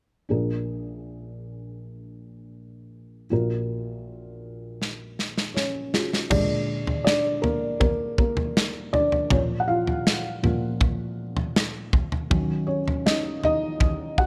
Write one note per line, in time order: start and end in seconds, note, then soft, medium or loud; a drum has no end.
0.29 3.26 A#1 soft
0.29 3.26 A#2 soft
0.29 3.26 D4 soft
0.29 3.26 G#4 soft
0.29 3.27 A#4 soft
3.30 6.27 A#1 soft
3.30 6.27 A#2 soft
3.30 5.89 F4 soft
3.30 5.90 F#4 soft
3.30 5.90 A#4 medium
4.82 snare soft
5.19 snare soft
5.38 snare soft
5.54 6.27 C#4 soft
5.54 6.32 C#5 medium
5.54 snare medium
5.94 6.31 F4 soft
5.94 6.31 F#4 soft
5.94 6.31 G#4 soft
5.94 snare medium
6.13 snare medium
6.30 6.81 A#2 soft
6.30 6.81 D3 soft
6.30 6.81 G#3 medium
6.30 7.03 D4 medium
6.30 7.03 D5 medium
6.30 kick medium
6.30 floor tom medium
6.30 crash medium
6.87 floor tom medium
7.04 7.41 D4 medium
7.04 7.44 D5 medium
7.04 snare loud
7.42 7.79 A#3 medium
7.42 7.79 A#4 medium
7.42 floor tom medium
7.80 7.90 A#3 medium
7.80 7.89 A#4 medium
7.80 kick medium
7.80 floor tom medium
8.18 8.90 A#3 medium
8.18 8.96 A#4 medium
8.18 kick medium
8.37 floor tom medium
8.57 snare medium
8.93 9.29 D4 medium
8.93 9.32 D5 medium
8.93 floor tom medium
9.12 floor tom soft
9.30 10.41 A#2 soft
9.30 10.42 F3 soft
9.30 10.42 A#3 medium
9.30 9.39 C#4 medium
9.30 9.38 C#5 medium
9.30 kick medium
9.30 floor tom medium
9.60 9.68 F#5 medium
9.68 10.77 F4 medium
9.68 10.77 F5 medium
9.87 floor tom soft
10.07 snare loud
10.43 10.77 A#2 soft
10.43 10.77 F3 soft
10.43 10.77 A#3 soft
10.43 floor tom medium
10.81 kick medium
10.81 floor tom medium
11.37 floor tom medium
11.56 snare loud
11.93 kick medium
11.93 floor tom medium
12.12 floor tom medium
12.30 12.80 D#3 medium
12.30 12.81 F#3 soft
12.30 12.67 C#4 medium
12.30 kick medium
12.30 floor tom medium
12.67 13.03 C#4 medium
12.67 13.02 C#5 medium
12.88 floor tom medium
13.06 13.15 D#4 medium
13.06 13.14 D#5 medium
13.06 snare medium
13.44 14.16 D#4 medium
13.44 14.15 D#5 loud
13.44 floor tom soft
13.80 kick medium
13.80 floor tom medium
14.18 14.27 F#4 medium
14.18 14.27 F#5 medium
14.18 kick medium